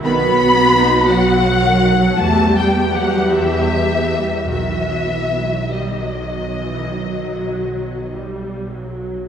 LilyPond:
<<
  \new Staff \with { instrumentName = "Violin section" } { \time 4/4 \key b \phrygian \tempo 4 = 50 b''4 fis''4 \tuplet 3/2 { a''8 g''8 fis''8 } e''4 | e''4 dis''2 r4 | }
  \new Staff \with { instrumentName = "Violin section" } { \time 4/4 \key b \phrygian b''4 fis''4 \tuplet 3/2 { a''8 g''8 fis''8 } e''4 | e''4 dis''2 r4 | }
  \new Staff \with { instrumentName = "Viola section" } { \clef bass \time 4/4 \key b \phrygian << { fis'2 g'2 | fis'4 g16 fis8 e16 fis4 g8 fis8 | } \\ { dis16 fis16 b16 dis'16 b16 fis16 dis16 fis16 e16 g16 b16 g16 e16 g16 b16 g16 | dis16 fis16 b16 fis16 r2. | } >> }
  \new Staff \with { instrumentName = "Cello section" } { \clef bass \time 4/4 \key b \phrygian b4 fis4 \tuplet 3/2 { a8 g8 fis8 } e4 | e4 dis2 r4 | }
  \new Staff \with { instrumentName = "Double bass section" } { \clef bass \time 4/4 \key b \phrygian b,,2 e,2 | b,,1 | }
>>